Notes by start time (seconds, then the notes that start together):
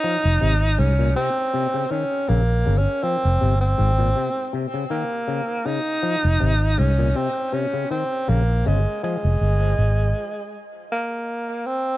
Already playing: D#4
0.04 F3
0.25 F1
0.41 G#1 C3
0.79 C2 G#2 C#4
0.99 A#2
1.16 C3 C4
1.54 C3
1.74 C#3
1.91 D#3 C#4
2.28 A#1 C#3 A#3
2.66 G1 C#3
2.78 C#4
3.03 F3 C4
3.25 F1
3.41 G1 C3
3.61 C4
3.78 G#1 G#2
3.99 A#2
4.16 C3
4.53 C3
4.74 C#3
4.90 D#3 A#3
5.28 C#3
5.66 C#3 D#4
6.03 F3
6.25 F1
6.40 G#1 C3
6.78 C2 G#2 C#4
6.99 A#2
7.16 C3 C4
7.53 C3 C#4
7.74 C#3
7.91 D#3 C4
8.28 A#1 C#3 A#3
8.66 G1 C#3 G#3
9.03 F3 G#3
9.25 F1
9.41 G1
9.79 G#1
10.92 A#3
11.66 C4